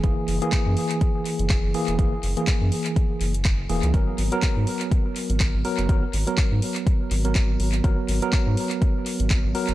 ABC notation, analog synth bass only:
X:1
M:4/4
L:1/16
Q:"Swing 16ths" 1/4=123
K:G#m
V:1 name="Analog synth bass" clef=bass
F,,, z F,,, z2 F,, z4 z F,,,2 F,,, z E,,, | F,,, z F,,, z2 F,, z4 F,,,4 E,,, C,, | G,,, z G,,, z2 G,, z4 z G,,,2 G,,, z F,,, | G,,, z G,,, z2 G,, z4 G,,,4 G,,,2 |
G,,, z G,,, z2 G,, z4 z G,,,2 G,,, z F,,, |]